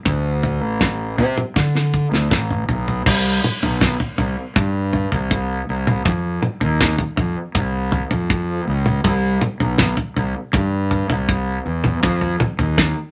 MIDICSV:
0, 0, Header, 1, 3, 480
1, 0, Start_track
1, 0, Tempo, 749064
1, 36, Time_signature, 4, 2, 24, 8
1, 8401, End_track
2, 0, Start_track
2, 0, Title_t, "Fingered electric bass"
2, 0, Program_c, 0, 33
2, 36, Note_on_c, 0, 38, 90
2, 390, Note_off_c, 0, 38, 0
2, 390, Note_on_c, 0, 33, 73
2, 757, Note_on_c, 0, 48, 89
2, 767, Note_off_c, 0, 33, 0
2, 862, Note_off_c, 0, 48, 0
2, 1000, Note_on_c, 0, 50, 87
2, 1311, Note_off_c, 0, 50, 0
2, 1355, Note_on_c, 0, 38, 68
2, 1461, Note_off_c, 0, 38, 0
2, 1481, Note_on_c, 0, 33, 70
2, 1697, Note_off_c, 0, 33, 0
2, 1719, Note_on_c, 0, 35, 68
2, 1936, Note_off_c, 0, 35, 0
2, 1962, Note_on_c, 0, 36, 103
2, 2169, Note_off_c, 0, 36, 0
2, 2326, Note_on_c, 0, 35, 73
2, 2531, Note_off_c, 0, 35, 0
2, 2685, Note_on_c, 0, 36, 81
2, 2787, Note_off_c, 0, 36, 0
2, 2920, Note_on_c, 0, 43, 88
2, 3232, Note_off_c, 0, 43, 0
2, 3289, Note_on_c, 0, 36, 83
2, 3597, Note_off_c, 0, 36, 0
2, 3646, Note_on_c, 0, 36, 79
2, 3851, Note_off_c, 0, 36, 0
2, 3879, Note_on_c, 0, 41, 102
2, 4087, Note_off_c, 0, 41, 0
2, 4247, Note_on_c, 0, 39, 80
2, 4452, Note_off_c, 0, 39, 0
2, 4602, Note_on_c, 0, 41, 85
2, 4705, Note_off_c, 0, 41, 0
2, 4834, Note_on_c, 0, 36, 90
2, 5148, Note_off_c, 0, 36, 0
2, 5198, Note_on_c, 0, 41, 86
2, 5509, Note_off_c, 0, 41, 0
2, 5558, Note_on_c, 0, 37, 81
2, 5766, Note_off_c, 0, 37, 0
2, 5795, Note_on_c, 0, 36, 107
2, 6004, Note_off_c, 0, 36, 0
2, 6152, Note_on_c, 0, 35, 82
2, 6362, Note_off_c, 0, 35, 0
2, 6513, Note_on_c, 0, 36, 84
2, 6619, Note_off_c, 0, 36, 0
2, 6755, Note_on_c, 0, 43, 93
2, 7066, Note_off_c, 0, 43, 0
2, 7111, Note_on_c, 0, 36, 80
2, 7423, Note_off_c, 0, 36, 0
2, 7469, Note_on_c, 0, 40, 82
2, 7678, Note_off_c, 0, 40, 0
2, 7709, Note_on_c, 0, 41, 112
2, 7918, Note_off_c, 0, 41, 0
2, 8071, Note_on_c, 0, 39, 83
2, 8278, Note_off_c, 0, 39, 0
2, 8401, End_track
3, 0, Start_track
3, 0, Title_t, "Drums"
3, 35, Note_on_c, 9, 43, 74
3, 38, Note_on_c, 9, 36, 92
3, 99, Note_off_c, 9, 43, 0
3, 102, Note_off_c, 9, 36, 0
3, 278, Note_on_c, 9, 43, 80
3, 342, Note_off_c, 9, 43, 0
3, 517, Note_on_c, 9, 38, 75
3, 518, Note_on_c, 9, 36, 113
3, 581, Note_off_c, 9, 38, 0
3, 582, Note_off_c, 9, 36, 0
3, 759, Note_on_c, 9, 43, 84
3, 823, Note_off_c, 9, 43, 0
3, 882, Note_on_c, 9, 47, 70
3, 946, Note_off_c, 9, 47, 0
3, 1001, Note_on_c, 9, 36, 101
3, 1003, Note_on_c, 9, 38, 53
3, 1065, Note_off_c, 9, 36, 0
3, 1067, Note_off_c, 9, 38, 0
3, 1124, Note_on_c, 9, 38, 48
3, 1188, Note_off_c, 9, 38, 0
3, 1241, Note_on_c, 9, 36, 68
3, 1305, Note_off_c, 9, 36, 0
3, 1369, Note_on_c, 9, 38, 57
3, 1433, Note_off_c, 9, 38, 0
3, 1482, Note_on_c, 9, 36, 104
3, 1483, Note_on_c, 9, 38, 73
3, 1547, Note_off_c, 9, 36, 0
3, 1547, Note_off_c, 9, 38, 0
3, 1605, Note_on_c, 9, 45, 67
3, 1669, Note_off_c, 9, 45, 0
3, 1722, Note_on_c, 9, 43, 85
3, 1786, Note_off_c, 9, 43, 0
3, 1846, Note_on_c, 9, 43, 64
3, 1910, Note_off_c, 9, 43, 0
3, 1962, Note_on_c, 9, 36, 110
3, 1963, Note_on_c, 9, 43, 83
3, 1963, Note_on_c, 9, 49, 99
3, 2027, Note_off_c, 9, 36, 0
3, 2027, Note_off_c, 9, 43, 0
3, 2027, Note_off_c, 9, 49, 0
3, 2206, Note_on_c, 9, 47, 75
3, 2270, Note_off_c, 9, 47, 0
3, 2325, Note_on_c, 9, 43, 83
3, 2389, Note_off_c, 9, 43, 0
3, 2443, Note_on_c, 9, 36, 108
3, 2445, Note_on_c, 9, 38, 82
3, 2507, Note_off_c, 9, 36, 0
3, 2509, Note_off_c, 9, 38, 0
3, 2563, Note_on_c, 9, 43, 77
3, 2627, Note_off_c, 9, 43, 0
3, 2679, Note_on_c, 9, 43, 83
3, 2743, Note_off_c, 9, 43, 0
3, 2922, Note_on_c, 9, 36, 109
3, 2922, Note_on_c, 9, 43, 79
3, 2986, Note_off_c, 9, 36, 0
3, 2986, Note_off_c, 9, 43, 0
3, 3160, Note_on_c, 9, 43, 79
3, 3224, Note_off_c, 9, 43, 0
3, 3281, Note_on_c, 9, 43, 87
3, 3345, Note_off_c, 9, 43, 0
3, 3403, Note_on_c, 9, 36, 104
3, 3467, Note_off_c, 9, 36, 0
3, 3763, Note_on_c, 9, 43, 77
3, 3763, Note_on_c, 9, 47, 71
3, 3827, Note_off_c, 9, 43, 0
3, 3827, Note_off_c, 9, 47, 0
3, 3879, Note_on_c, 9, 43, 83
3, 3881, Note_on_c, 9, 36, 108
3, 3943, Note_off_c, 9, 43, 0
3, 3945, Note_off_c, 9, 36, 0
3, 4117, Note_on_c, 9, 47, 76
3, 4181, Note_off_c, 9, 47, 0
3, 4236, Note_on_c, 9, 43, 83
3, 4300, Note_off_c, 9, 43, 0
3, 4362, Note_on_c, 9, 36, 112
3, 4362, Note_on_c, 9, 38, 81
3, 4426, Note_off_c, 9, 36, 0
3, 4426, Note_off_c, 9, 38, 0
3, 4476, Note_on_c, 9, 43, 79
3, 4540, Note_off_c, 9, 43, 0
3, 4596, Note_on_c, 9, 43, 89
3, 4661, Note_off_c, 9, 43, 0
3, 4837, Note_on_c, 9, 43, 80
3, 4839, Note_on_c, 9, 36, 99
3, 4901, Note_off_c, 9, 43, 0
3, 4903, Note_off_c, 9, 36, 0
3, 5076, Note_on_c, 9, 43, 83
3, 5140, Note_off_c, 9, 43, 0
3, 5195, Note_on_c, 9, 43, 80
3, 5260, Note_off_c, 9, 43, 0
3, 5319, Note_on_c, 9, 36, 112
3, 5383, Note_off_c, 9, 36, 0
3, 5676, Note_on_c, 9, 43, 74
3, 5676, Note_on_c, 9, 47, 70
3, 5740, Note_off_c, 9, 43, 0
3, 5740, Note_off_c, 9, 47, 0
3, 5794, Note_on_c, 9, 43, 88
3, 5797, Note_on_c, 9, 36, 106
3, 5858, Note_off_c, 9, 43, 0
3, 5861, Note_off_c, 9, 36, 0
3, 6033, Note_on_c, 9, 47, 76
3, 6097, Note_off_c, 9, 47, 0
3, 6153, Note_on_c, 9, 43, 76
3, 6218, Note_off_c, 9, 43, 0
3, 6269, Note_on_c, 9, 38, 84
3, 6274, Note_on_c, 9, 36, 120
3, 6333, Note_off_c, 9, 38, 0
3, 6338, Note_off_c, 9, 36, 0
3, 6389, Note_on_c, 9, 43, 76
3, 6453, Note_off_c, 9, 43, 0
3, 6514, Note_on_c, 9, 43, 82
3, 6578, Note_off_c, 9, 43, 0
3, 6748, Note_on_c, 9, 43, 85
3, 6754, Note_on_c, 9, 36, 105
3, 6812, Note_off_c, 9, 43, 0
3, 6818, Note_off_c, 9, 36, 0
3, 6991, Note_on_c, 9, 43, 77
3, 7055, Note_off_c, 9, 43, 0
3, 7111, Note_on_c, 9, 43, 86
3, 7175, Note_off_c, 9, 43, 0
3, 7233, Note_on_c, 9, 36, 108
3, 7297, Note_off_c, 9, 36, 0
3, 7586, Note_on_c, 9, 43, 79
3, 7586, Note_on_c, 9, 47, 73
3, 7650, Note_off_c, 9, 43, 0
3, 7650, Note_off_c, 9, 47, 0
3, 7707, Note_on_c, 9, 43, 78
3, 7711, Note_on_c, 9, 36, 107
3, 7771, Note_off_c, 9, 43, 0
3, 7775, Note_off_c, 9, 36, 0
3, 7826, Note_on_c, 9, 43, 68
3, 7890, Note_off_c, 9, 43, 0
3, 7947, Note_on_c, 9, 43, 76
3, 7947, Note_on_c, 9, 47, 82
3, 8011, Note_off_c, 9, 43, 0
3, 8011, Note_off_c, 9, 47, 0
3, 8066, Note_on_c, 9, 43, 85
3, 8130, Note_off_c, 9, 43, 0
3, 8188, Note_on_c, 9, 38, 84
3, 8190, Note_on_c, 9, 36, 112
3, 8253, Note_off_c, 9, 38, 0
3, 8254, Note_off_c, 9, 36, 0
3, 8401, End_track
0, 0, End_of_file